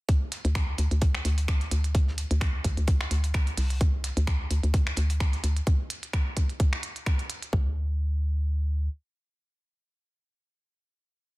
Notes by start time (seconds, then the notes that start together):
0.09 kick, closed hi-hat
0.32 snare, closed hi-hat
0.45 D2, closed hi-hat
0.55 finger snap, kick, snare, closed hi-hat
0.78 D2, closed hi-hat
0.91 D2, closed hi-hat
1.01 kick, closed hi-hat
1.15 finger snap
1.25 D2, closed hi-hat
1.38 closed hi-hat
1.48 finger snap, kick, snare, closed hi-hat
1.61 snare, closed hi-hat
1.71 D2, closed hi-hat
1.84 closed hi-hat
1.95 kick, closed hi-hat
2.08 snare
2.18 closed hi-hat
2.31 D2, closed hi-hat
2.41 finger snap, kick, snare, closed hi-hat
2.64 D2, kick, closed hi-hat
2.77 D2, closed hi-hat
2.87 kick, closed hi-hat
3.00 finger snap, snare
3.11 D2, closed hi-hat
3.24 closed hi-hat
3.34 finger snap, kick, snare, closed hi-hat
3.47 closed hi-hat
3.57 C2, snare, closed hi-hat, open hi-hat
3.70 closed hi-hat
3.81 kick, closed hi-hat
4.04 snare, closed hi-hat
4.17 D2, closed hi-hat
4.27 finger snap, kick, snare, closed hi-hat
4.50 D2, closed hi-hat
4.63 D2, closed hi-hat
4.74 kick, closed hi-hat
4.87 finger snap
4.97 D2, closed hi-hat
5.10 closed hi-hat
5.20 finger snap, kick, snare, closed hi-hat
5.33 snare, closed hi-hat
5.44 D2, closed hi-hat
5.57 closed hi-hat
5.67 kick, closed hi-hat
5.90 closed hi-hat
6.03 closed hi-hat
6.13 finger snap, kick, closed hi-hat
6.37 kick, closed hi-hat
6.49 closed hi-hat
6.60 kick, closed hi-hat
6.73 finger snap
6.83 closed hi-hat
6.96 closed hi-hat
7.06 finger snap, kick, closed hi-hat
7.19 closed hi-hat
7.30 closed hi-hat
7.42 closed hi-hat
7.53 D2, kick